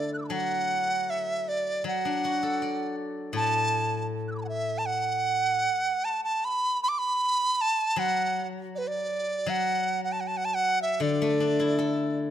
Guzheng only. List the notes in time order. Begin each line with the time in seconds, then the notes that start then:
Already playing: D3 A3 D4 E4 A4
0.30 F#3
1.84 F#3
2.05 D4
2.25 F#4
2.43 A4
2.62 D5
3.33 A2
7.96 F#3
9.46 F#3
11.00 D3
11.22 A3
11.40 D4
11.60 E4
11.79 A4